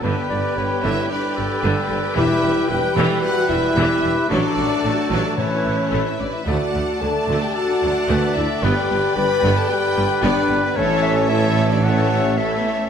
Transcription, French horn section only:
\new Staff \with { instrumentName = "French horn section" } { \time 4/4 \key d \major \tempo 4 = 112 b4. e'8 d'4 r4 | e'4 g'4 fis'8 e'4. | d'4. d'8 cis'4~ cis'16 e'16 d'16 e'16 | fis'4 a'8. g'16 fis'4. e'8 |
g'4 b'8. a'16 g'4 d'8. b16 | cis'4 e'8. d'16 cis'4 \tuplet 3/2 { a8 b8 cis'8 } | }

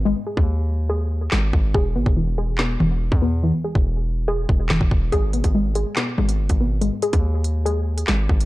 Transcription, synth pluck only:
\new Staff \with { instrumentName = "Synth pluck" } { \time 4/4 \key gis \minor \tempo 4 = 142 <gis b gis'>8 gis'4. gis'4 gis4 | gis'8 b8 e8 gis'8 b8 e4 b8 | e8 gis'4. gis'4 e4 | gis'8 b8 gis8 gis'8 b8 gis4 b8 |
gis8 gis'4. gis'4 gis4 | }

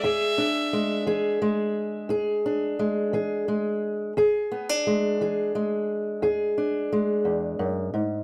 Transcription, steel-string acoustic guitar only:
\new Staff \with { instrumentName = "Steel-string acoustic guitar" } { \clef bass \time 12/8 \key e \mixolydian \tempo 4. = 58 << { gis'8 d'8 gis8 gis'8 gis4 gis'8 d'8 gis8 gis'8 gis4 | gis'8 b16 d'16 gis8 gis'8 gis4 gis'8 d'8 gis2 | } \\ { e,4 r8 e4 r8 e,4 r8 e4 r8 | e,4 r8 e4 r8 e,4 r8 e,8 fis,8 gis,8 | } >> }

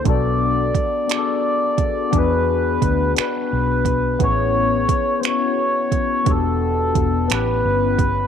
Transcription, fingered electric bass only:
\new Staff \with { instrumentName = "Fingered electric bass" } { \clef bass \time 6/8 \key e \mixolydian \tempo 4. = 58 b,,4 r2 | e,4 d,8 r8 b,,4 | a,,4 r2 | e,,4 e,,8 a,,8 g,,4 | }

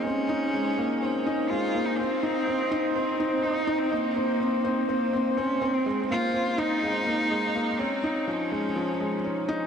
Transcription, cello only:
\new Staff \with { instrumentName = "Cello" } { \time 4/4 \key aes \major \tempo 4 = 124 des'2 des'4 f'8. ees'16 | c'2 c'4 ees'8. c'16 | bes2 bes4 des'8. c'16~ | c'16 r16 f'4 ees'2~ ees'8 |
c'4 des'2~ des'8 r8 | }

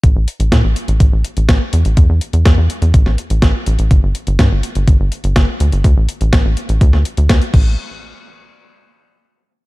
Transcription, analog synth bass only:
\new Staff \with { instrumentName = "Analog synth bass" } { \clef bass \time 4/4 \key d \dorian \tempo 4 = 124 a,,16 a,,16 r16 a,,16 a,16 a,,16 r16 a,,16 a,,16 a,,16 r16 a,,16 a,,16 r16 e,16 a,,16 | e,16 e,16 r16 e,16 e,16 e,16 r16 e,16 a,,16 a,,16 r16 a,,16 a,,16 r16 a,,16 a,,16 | g,,16 g,,16 r16 g,,16 g,16 g,,16 r16 g,,16 g,,16 g,,16 r16 g,,16 g,,16 r16 d,16 g,,16 | d,16 a,,16 r16 a,,16 a,,16 a,,16 r16 a,,16 d,16 d,16 r16 d,16 d,16 r16 a,,8 |
r1 | }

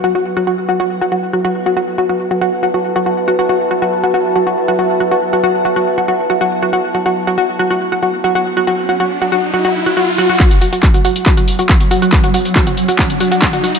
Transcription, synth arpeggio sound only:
\new Staff \with { instrumentName = "Synth arpeggio sound" } { \time 4/4 \key fis \minor \tempo 4 = 139 fis'16 fis'16 r16 fis'16 fis'16 r16 fis'16 fis'16 r16 fis'16 fis'16 r16 fis'16 fis'16 r16 fis'16 | fis'16 r16 fis'16 fis'16 r16 fis'16 fis'16 r16 fis'16 fis'16 r16 fis'16 fis'16 r16 fis'16 fis'16 | fis'16 r16 fis'16 fis'16 r16 fis'16 fis'16 r16 fis'16 fis'16 r16 fis'16 fis'16 r16 fis'16 fis'16 | r16 fis'16 fis'16 r16 fis'16 fis'16 r16 fis'16 fis'16 r16 fis'16 fis'16 r16 fis'16 fis'16 r16 |
fis'16 fis'16 r16 fis'16 fis'16 r16 fis'16 fis'16 r16 fis'16 fis'16 r16 fis'16 fis'16 r16 fis'16 | fis'16 r16 fis'16 fis'16 r16 fis'16 fis'16 r16 fis'16 fis'16 r16 fis'16 fis'16 r16 fis'16 fis'16 | fis'16 r16 fis'16 fis'16 r16 fis'16 fis'16 r16 fis'16 fis'16 r16 fis'16 fis'16 r16 fis'16 fis'16 | r16 fis'16 fis'16 r16 fis'16 fis'16 r16 fis'16 fis'16 r16 fis'16 fis'16 r16 fis'16 fis'16 r16 | }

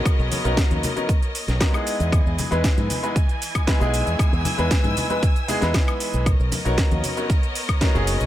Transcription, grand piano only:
\new Staff \with { instrumentName = "Grand piano" } { \time 4/4 \key b \major \tempo 4 = 116 <fis b cis' dis' gis'>8. <fis b cis' dis' ais'>4 <fis b cis' dis' ais'>16 r4 <fis b cis' dis' ais'>16 <gis b dis' e' gis'>8.~ | <gis b dis' e' gis'>8. <gis b dis' e' b'>4 <gis b dis' e' b'>16 r4 <gis b dis' e' b'>16 <gis b dis' e' gis'>8.~ | <gis b dis' e' gis'>8. <gis b dis' e' b'>4 <gis b dis' e' b'>16 r8 <gis b dis' e' gis'>16 <gis b dis' e' b'>4~ <gis b dis' e' b'>16 | r8. <fis b cis' dis' ais'>4 <fis b cis' dis' ais'>16 r4 <fis b cis' dis' ais'>16 <fis b cis' dis' gis'>8. | }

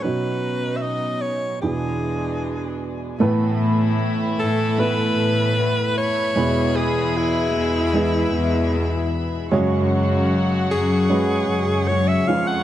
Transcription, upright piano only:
<<
  \new Staff \with { instrumentName = "Upright piano" } { \time 4/4 \key e \major \tempo 4 = 76 <b cis' dis' fis'>2 <b d' e' gis'>2 | \key a \major <a b e' a' b'>2 <a b e' a' b'>2 | <gis b e' gis' b'>2 <gis b e' gis' b'>2 | <gis cis' fis' gis' cis''>2 <gis cis' fis' gis' b'>4. <gis cis' eis' gis' b' cis''>8 | }
  \new Staff \with { instrumentName = "Upright piano" } { \clef bass \time 4/4 \key e \major <b, fis>2 <e, b,>2 | \key a \major <a, e>4. r2 r8 | b,4. r2 r8 | cis4. r2 eis8 | }
>>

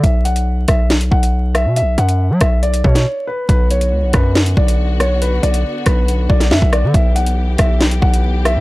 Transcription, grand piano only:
\new Staff \with { instrumentName = "Grand piano" } { \time 4/4 \key b \minor \tempo 4 = 139 e''8 fis''4 e''8 r8 fis''4 e''8 | e''8 fis''4 e''8 d''8 cis''4 b'8 | b'8 cis''4 b'8 r8 d''4 cis''8 | b'8 d''4 b'4 d''8 e''8 d''8 |
e''8 fis''4 e''8 r8 fis''4 e''8 | }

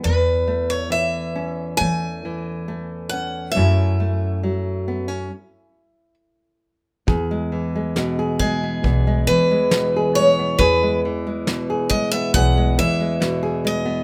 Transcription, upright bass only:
\new Staff \with { instrumentName = "Upright bass" } { \clef bass \time 4/4 \key e \major \tempo 4 = 68 e,2 e2 | fis,2 r2 | e,2 b,,8 e4. | e,2 b,,8 e4. | }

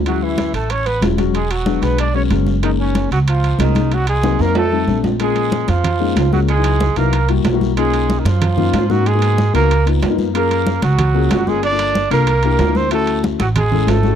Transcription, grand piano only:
\new Staff \with { instrumentName = "Grand piano" } { \time 4/4 \key fis \major \tempo 4 = 187 <fis gis cis' e'>4. r4. <fis gis cis' e'>16 r16 <fis gis cis' fis'>8 | r4 <fis gis b d'>16 r16 <fis gis b d'>8. r16 <fis gis b cis'>16 r16 <fis gis b cis'>8. r16 | <gis ais cis' dis'>4. r4. <gis ais cis' dis'>16 r16 <gis ais cis' dis'>8 | r4 <ges bes c' ees'>16 r16 <ges bes c' ees'>8 r8 <g a c' ees'>16 r16 <g a c' d'>8. r16 |
<gis ais cis' eis'>4. r4 <gis ais cis' dis'>8. r16 <gis ais cis' eis'>8 | r16 <fis b dis' e'>8. r8 <fis b dis' e'>8 r8 <g bes e' fis'>8 r16 <g bes e' fis'>8 r16 | <ais cis' dis' eis'>4. r4 <ais cis' dis' eis'>8. r16 <ais cis' dis' fis'>8 | r16 <ais b dis' fis'>8. r8 <ais b dis' fis'>8 r8 <ais b dis' eis'>8 r16 <ais b dis' eis'>8 r16 |
<ais cis' eis' gis'>4. r4 <ais cis' eis' gis'>8. r16 <ais cis' eis' gis'>8 | r16 <bes d' f' a'>8. r8 <bes d' f' a'>8 r8 <bes d' e' g'>8 r16 <bes d' e' bes'>8 r16 | <a cis' e' fis'>4. r4 <gis cis' e' a'>8. r16 <gis cis' e' fis'>8 | }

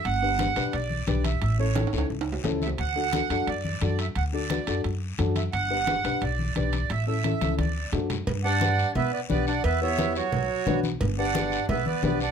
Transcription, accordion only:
\new Staff \with { instrumentName = "Accordion" } { \time 4/4 \key g \lydian \tempo 4 = 175 fis''2 d''4 d''8 e''8 | e''8 cis''4. r4. e''8 | fis''2 d''4 d''8 e''8 | fis''8 d''4. r4. e''8 |
fis''2 d''4 d''4 | e''8 e''4. d''4 r4 | r8 <d'' fis''>4. <b' e''>8 <b' d''>8 <b' d''>8 <d'' fis''>8 | <b' e''>8 <cis'' e''>4 <fis' cis''>2 r8 |
r8 <d'' fis''>4. <b' e''>8 <b' d''>8 <b' d''>8 <d'' fis''>8 | }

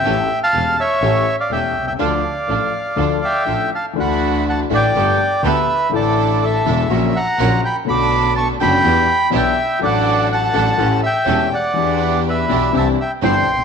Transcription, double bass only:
\new Staff \with { instrumentName = "Double bass" } { \clef bass \time 4/4 \key d \minor \tempo 4 = 123 a,,8 r8 e,,8 r8 a,,8 r8 e,,8 c,8 | d,8 r8 a,,8 r8 d,8 r8 a,,8 r8 | \key d \major d,4. a,,8 g,,8 r8 d,8 r8 | a,,4. e,,8 ais,,8 r8 ais,,8 r8 |
b,,4. fis,,8 e,8 r8 b,,8 r8 | a,,4. a,,8 a,,8 r8 e,,8 r8 | e,4. b,,8 c,8 r8 g,,8 b,,8 | }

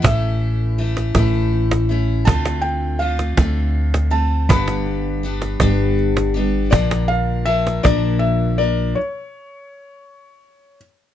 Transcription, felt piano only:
\new Staff \with { instrumentName = "Felt piano" } { \time 6/8 \key bes \lydian \tempo 4. = 54 e''2~ e''8 r8 | a''8 g''8 f''4. a''8 | b''2 r4 | d''8 f''8 e''8 d''8 e''8 d''8 |
cis''2~ cis''8 r8 | }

